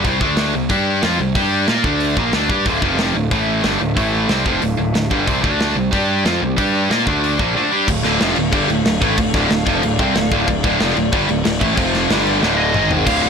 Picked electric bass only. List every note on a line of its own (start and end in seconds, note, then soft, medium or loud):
0.05 0.20 C2 medium
0.21 0.52 D2 medium
0.54 0.69 C2 medium
0.70 1.01 G2 medium
1.04 1.19 F2 medium
1.19 1.34 C2 medium
1.35 1.66 G2 medium
1.69 1.83 A#2 medium
1.84 2.15 D2 medium
2.17 2.32 A#1 medium
2.34 2.49 D2 medium
2.50 2.65 G2 medium
2.66 2.81 D1 medium
2.82 3.13 F1 medium
3.15 3.30 D1 medium
3.31 3.62 A1 medium
3.64 3.79 G1 medium
3.80 3.95 D1 medium
3.97 4.27 A1 medium
4.29 4.44 C2 medium
4.46 4.61 F1 medium
4.62 4.77 D1 medium
4.78 4.93 D1 medium
4.95 5.10 D1 medium
5.11 5.26 G1 medium
5.28 5.43 C2 medium
5.44 5.74 D2 medium
5.76 5.91 C2 medium
5.93 6.23 G2 medium
6.25 6.40 F2 medium
6.42 6.57 C2 medium
6.59 6.88 G2 medium
6.90 7.06 A#2 medium
7.07 7.37 D2 medium
7.40 7.55 A#1 medium
7.88 8.03 D1 medium
8.05 8.20 D1 loud
8.21 8.36 F1 medium
8.37 8.52 D1 medium
8.53 8.68 G1 medium
8.68 8.84 D1 medium
8.85 9.00 D1 medium
9.02 9.17 A1 loud
9.18 9.33 D1 medium
9.34 9.49 D1 loud
9.51 9.65 D1 medium
9.67 9.82 F1 loud
9.84 9.98 D1 medium
10.00 10.14 C2 loud
10.15 10.30 D1 medium
10.32 10.47 D1 loud
10.48 10.63 D1 medium
10.64 10.79 D1 loud
10.80 10.95 F1 loud
10.96 11.11 D1 medium
11.13 11.28 G1 loud
11.29 11.44 D1 medium
11.45 11.60 D1 medium
11.61 11.76 A1 loud
11.78 12.08 F1 loud
12.10 12.40 G1 loud
12.43 12.73 D1 medium
12.75 13.05 G#1 loud
13.07 13.21 D1 loud
13.24 13.29 D1 medium